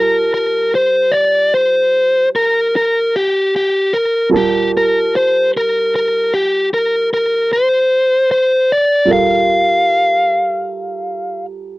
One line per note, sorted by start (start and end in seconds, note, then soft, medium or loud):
0.00 4.24 G3 soft
0.00 4.25 F4 soft
0.00 0.33 A#4 medium
0.00 4.26 A#4 soft
0.00 4.25 A5 soft
0.34 0.74 A#4 medium
0.75 1.14 C5 medium
1.12 1.52 D5 medium
1.54 2.28 C5 medium
2.36 2.74 A#4 medium
2.76 3.14 A#4 medium
3.16 3.54 G4 medium
3.56 3.94 G4 medium
3.93 4.29 A#4 medium
4.29 9.03 G3 soft
4.29 9.04 F4 soft
4.29 9.05 A#4 soft
4.29 9.05 A5 soft
4.37 4.70 G4 medium
4.77 5.14 A#4 medium
5.16 5.50 C5 medium
5.57 5.94 A#4 medium
5.96 6.33 A#4 medium
6.34 6.68 G4 medium
6.74 7.08 A#4 medium
7.14 7.52 A#4 medium
7.53 8.30 C5 medium
8.31 8.71 C5 medium
8.72 9.11 D5 medium
9.05 11.79 G3 soft
9.05 11.79 F4 soft
9.05 11.79 A4 soft
9.09 11.79 A#4 soft
9.09 11.45 F5 medium